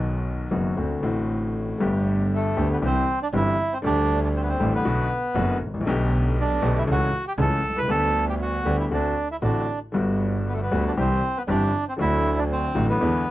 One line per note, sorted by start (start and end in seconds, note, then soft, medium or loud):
0.00 0.47 B1 medium
0.00 0.47 B2 medium
0.00 0.46 D#3 medium
0.00 0.47 F#3 medium
0.00 0.47 B3 medium
0.00 0.48 F#4 medium
0.51 0.73 F#1 medium
0.51 0.73 F#2 medium
0.51 0.72 D#3 medium
0.51 0.73 F#3 medium
0.51 0.73 B3 medium
0.51 0.73 F#4 medium
0.77 0.99 D2 medium
0.77 0.99 D3 medium
0.77 0.98 A3 medium
0.77 0.99 C4 medium
0.77 0.99 F#4 medium
1.01 1.76 A1 medium
1.01 1.76 A2 medium
1.01 1.75 D3 medium
1.01 1.76 A3 medium
1.01 1.77 C4 medium
1.05 1.77 F#4 medium
1.78 2.53 G1 loud
1.78 2.53 G1 medium
1.78 2.53 G2 medium
1.78 2.52 D3 medium
1.78 2.53 A3 medium
1.78 2.53 B3 medium
1.82 2.54 G4 medium
2.34 2.69 A3 medium
2.56 2.78 D2 loud
2.56 2.78 D2 medium
2.56 2.78 D3 medium
2.56 2.78 A3 medium
2.56 2.78 B3 medium
2.56 2.78 G4 medium
2.73 2.78 B3 medium
2.81 3.03 C2 medium
2.81 3.04 C2 medium
2.81 3.04 C3 medium
2.81 3.03 E3 medium
2.81 3.03 G3 medium
2.81 3.04 C4 medium
2.81 3.04 G4 medium
2.86 3.20 C4 loud
3.23 3.28 D4 medium
3.33 3.54 G1 loud
3.33 3.55 G1 medium
3.33 3.55 G2 medium
3.33 3.55 E3 medium
3.33 3.55 G3 medium
3.33 3.55 C4 medium
3.33 3.74 E4 loud
3.33 3.55 G4 medium
3.73 3.78 C4 medium
3.82 4.56 D2 loud
3.82 4.56 D2 medium
3.82 4.56 D3 medium
3.82 4.56 G3 medium
3.82 4.56 A3 medium
3.82 4.20 D4 loud
3.86 4.57 G4 medium
4.24 4.29 D4 medium
4.36 4.42 C4 medium
4.43 4.49 B3 medium
4.49 4.73 C4 medium
4.60 4.81 A1 loud
4.60 4.81 A1 medium
4.60 4.81 A2 medium
4.60 4.81 D3 medium
4.60 4.81 G3 medium
4.60 4.81 A3 medium
4.60 4.81 G4 medium
4.75 5.58 B3 medium
4.85 5.06 B1 medium
4.85 5.06 B2 medium
4.85 5.06 D3 medium
4.85 5.06 A3 medium
4.85 5.06 B3 medium
4.85 5.06 F#4 medium
5.35 5.57 F#1 loud
5.35 5.57 F#1 medium
5.35 5.56 F#2 medium
5.35 5.57 D3 medium
5.35 5.56 A3 medium
5.35 5.57 B3 medium
5.35 5.57 F#4 medium
5.61 5.86 A1 medium
5.67 5.73 G#1 soft
5.74 5.80 A1 medium
5.81 5.87 A#1 medium
5.85 6.58 B1 loud
5.85 6.59 B1 loud
5.85 6.59 B2 medium
5.85 6.58 D3 medium
5.85 6.58 A3 medium
5.85 6.59 B3 medium
5.85 6.60 G4 medium
6.41 6.78 D4 medium
6.62 6.83 B1 loud
6.62 6.83 B1 medium
6.62 6.83 B2 loud
6.62 6.83 D3 medium
6.62 6.83 A3 medium
6.62 6.83 B3 medium
6.62 6.84 G4 medium
6.78 6.83 E4 medium
6.87 7.09 C#2 medium
6.87 7.09 C#2 loud
6.87 7.09 C#3 medium
6.87 7.08 E3 medium
6.87 7.08 A3 medium
6.87 7.09 C#4 medium
6.87 7.09 A4 medium
6.92 7.25 F#4 loud
7.28 7.33 G4 medium
7.38 7.59 C#2 medium
7.38 7.59 C#2 loud
7.38 7.59 C#3 medium
7.38 7.59 E3 medium
7.38 7.59 A3 medium
7.38 7.59 C#4 medium
7.38 7.59 A4 medium
7.38 7.79 A4 loud
7.63 7.88 C2 medium
7.69 7.76 B1 soft
7.76 7.83 C2 medium
7.76 7.90 B4 loud
7.83 7.89 C#2 medium
7.87 8.62 D2 loud
7.87 8.62 D2 medium
7.87 8.62 D3 medium
7.87 8.62 G3 medium
7.87 8.62 B3 medium
7.87 8.25 A4 loud
7.91 8.63 G4 medium
8.29 8.35 G4 medium
8.42 8.77 F#4 medium
8.65 8.87 D2 medium
8.65 8.87 D3 medium
8.65 8.87 G3 medium
8.65 8.87 B3 medium
8.65 8.87 G4 medium
8.80 8.85 E4 medium
8.91 9.13 D2 medium
8.91 9.13 D3 medium
8.91 9.13 A3 medium
8.91 9.13 C4 medium
8.91 9.28 D4 medium
8.91 9.13 F#4 medium
9.31 9.37 E4 medium
9.42 9.64 A1 medium
9.42 9.64 A2 medium
9.42 9.64 D3 medium
9.42 9.64 A3 medium
9.42 9.64 C4 medium
9.42 9.79 D4 medium
9.42 9.64 F#4 medium
9.92 10.67 G1 medium
9.92 10.68 G1 medium
9.92 10.68 G2 medium
9.92 10.67 D3 medium
9.92 10.67 G3 medium
9.92 10.68 B3 medium
9.96 10.69 F#4 medium
10.49 10.54 B3 medium
10.54 10.60 A3 medium
10.63 10.84 B3 medium
10.71 10.93 D2 medium
10.71 10.93 D3 medium
10.71 10.93 G3 medium
10.71 10.93 B3 medium
10.71 10.93 F#4 medium
10.87 10.92 D4 medium
10.97 11.19 C2 medium
10.97 11.19 C3 medium
10.97 11.19 E3 medium
10.97 11.19 G3 medium
10.97 11.19 C4 medium
10.97 11.38 C4 medium
10.97 11.19 G4 medium
11.37 11.43 B3 medium
11.48 11.70 G1 loud
11.48 11.70 G1 medium
11.48 11.70 G2 medium
11.48 11.69 E3 medium
11.48 11.70 G3 medium
11.48 11.70 C4 medium
11.48 11.85 D4 medium
11.48 11.70 G4 medium
11.89 11.94 C4 medium
11.97 12.72 D2 medium
11.97 12.72 D2 loud
11.97 11.98 D3 medium
11.97 12.72 D3 medium
11.97 12.71 F#3 medium
11.97 12.72 A3 medium
12.01 12.40 E4 loud
12.01 12.73 F#4 medium
12.38 12.44 D4 medium
12.52 12.86 C4 medium
12.74 12.97 A1 medium
12.74 12.97 A1 loud
12.74 12.97 A2 medium
12.74 12.96 D3 medium
12.74 12.97 F#3 medium
12.74 12.97 A3 medium
12.74 12.97 F#4 medium
12.90 13.31 B3 medium
13.00 13.22 E2 medium
13.00 13.22 E2 loud
13.00 13.22 D3 medium
13.00 13.22 E3 medium
13.00 13.22 G#3 medium
13.00 13.22 B3 medium
13.00 13.22 E4 medium